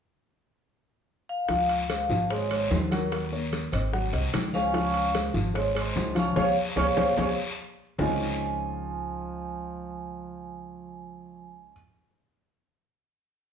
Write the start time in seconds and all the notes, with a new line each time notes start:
1.29 F5
1.48 C#2 F3 F4 F5, high bongo, high conga, high timbale, long guiro
1.69 high conga, high timbale
1.89 G#3 G#4 C5, high bongo, high conga, high timbale, low timbale, short guiro
2.09 G#1 F3 F4 F5, high bongo, high conga, short guiro
2.30 G#3 G#4 C5 C#5, high bongo, high conga, high timbale, long guiro
2.51 G#3 G#4 C5, high bongo, high conga, high timbale
2.71 D#2 G#3 C5, high bongo, low bongo, high conga, low timbale, short guiro
2.91 F#3 F#4 A#4 F#5, high bongo, high conga, high timbale, short guiro
3.12 high bongo, high conga, high timbale, long guiro
3.32 A#3 A#4 C#5, high conga
3.52 high bongo, high conga, high timbale, low timbale, short guiro
3.72 G#1 C4 C5 D#5, high bongo, high timbale, short guiro
3.93 F#3 F#4 F#5, high bongo, high conga, long guiro
4.13 C2 C4 C5 D#5, high bongo, high conga, high timbale
4.33 C#2, high bongo, low bongo, high conga, high timbale, low timbale, short guiro
4.53 G#3 C#4 G#4 C5 F5, high bongo, high conga, short guiro
4.74 F3 F4 F5, high bongo, high conga, high timbale, long guiro
4.94 high conga, high timbale
5.14 G#3 G#4 C5, high bongo, high conga, high timbale, low timbale, short guiro
5.34 G#1 F3 F4 F5, high bongo, high conga, short guiro
5.54 G#3 G#4 C5 C#5, high bongo, high conga, high timbale, long guiro
5.74 G#3 G#4 C5, high bongo, high conga, high timbale
5.96 C#2, high bongo, low bongo, high conga, low timbale, short guiro
6.15 F3 C#4 F4 F5, high bongo, high conga, high timbale, short guiro
6.19 F5
6.36 C#2 C#4 G#4 C5 C#5 F5, low bongo, high conga, high timbale, long guiro
6.76 C#2 C#4 G#4 C5 C#5 F5, low bongo, high conga, high timbale, long guiro
6.96 C#2 C#4 G#4 C5 C#5 F5, low bongo, high conga, high timbale, long guiro
7.17 C#2 C#4 G#4 C5 C#5 F5, low bongo, high conga, high timbale, long guiro
7.98 C#2 C#3 F3 G#3 C4 C#4 D#4 F4 G#5, low bongo, low conga, low timbale, long guiro